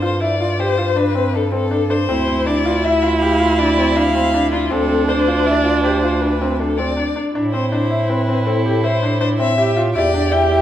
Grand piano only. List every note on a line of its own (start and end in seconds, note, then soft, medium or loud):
0.02 0.13 F4 medium
0.21 0.32 E4 medium
0.40 0.51 F4 medium
0.59 0.70 G4 medium
0.78 0.89 F4 medium
0.96 1.07 D4 medium
1.15 1.26 C4 medium
1.33 1.45 D4 medium
1.52 1.63 C4 medium
1.71 1.82 D4 medium
1.90 2.01 D4 medium
2.09 2.20 C4 medium
2.28 2.39 C4 medium
2.46 2.57 D4 medium
2.65 2.76 F4 medium
2.84 2.95 E4 medium
3.03 3.14 F4 medium
3.21 3.32 G4 medium
3.40 3.51 F4 medium
3.59 3.70 D4 medium
3.77 3.88 C4 medium
3.96 4.07 D4 medium
4.15 4.26 C4 medium
4.34 4.45 D4 medium
4.52 4.63 D4 medium
4.70 4.82 C4 medium
4.89 5.00 C4 medium
5.08 5.19 D4 medium
5.28 5.39 F4 medium
5.46 5.57 E4 medium
5.65 5.76 F4 medium
5.84 5.95 G4 medium
6.03 6.14 F4 medium
6.22 6.33 D4 medium
6.41 6.52 C4 medium
6.60 6.71 D4 medium
6.79 6.89 C4 medium
6.97 7.08 D4 medium
7.16 7.27 D4 medium
7.35 7.46 D4 medium
7.54 7.64 C4 medium
7.72 7.83 D4 medium
7.91 8.01 E4 medium
8.10 8.20 C4 medium
8.28 8.39 C4 medium
8.47 8.57 C4 medium
8.66 8.76 G4 medium
8.84 8.95 E4 medium
9.03 9.13 D4 medium
9.21 9.32 D4 medium
9.40 9.51 C4 medium
9.58 9.69 E4 medium
9.77 9.88 F4 medium
9.95 10.06 E4 medium
10.14 10.25 D4 medium
10.33 10.44 E4 medium
10.52 10.62 E4 medium